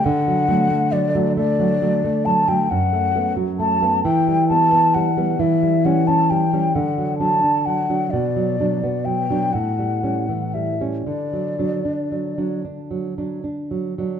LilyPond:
<<
  \new Staff \with { instrumentName = "Flute" } { \time 6/8 \key d \major \tempo 4. = 44 fis''4 d''8 d''4 a''16 g''16 | fis''4 a''8 g''8 a''8 fis''8 | e''8 fis''16 a''16 g''8 fis''8 a''8 fis''8 | d''4 g''8 fis''4 e''8 |
d''4. r4. | }
  \new Staff \with { instrumentName = "Nylon-string guitar" } { \clef bass \time 6/8 \key d \major d16 fis16 <fis a>16 a16 fis16 <fis a>16 a16 fis16 <fis a>16 a16 fis16 <fis a>16 | fis,16 a16 <a b>16 fis16 a16 <a b>16 e16 g16 <g b>16 b16 g16 <g b>16 | e16 g16 <g cis'>16 cis'16 g16 <g cis'>16 d16 fis16 <fis d'>16 d'16 fis16 <fis d'>16 | b,16 fis16 <fis d'>16 b16 fis16 <fis d'>16 a,16 g16 <g cis'>16 e16 g16 <g cis'>16 |
d16 fis16 <fis d'>16 d'16 fis16 <fis d'>16 d'16 fis16 <fis d'>16 d'16 fis16 <fis d'>16 | }
>>